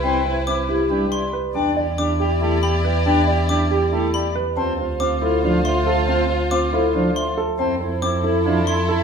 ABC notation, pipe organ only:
X:1
M:7/8
L:1/8
Q:1/4=139
K:Ddor
V:1 name="Pipe organ"
C z3 G, z2 | D z3 A, z2 | D z3 A, z2 | C z3 F, z2 |
C z3 F, z2 | C z3 F, z2 |]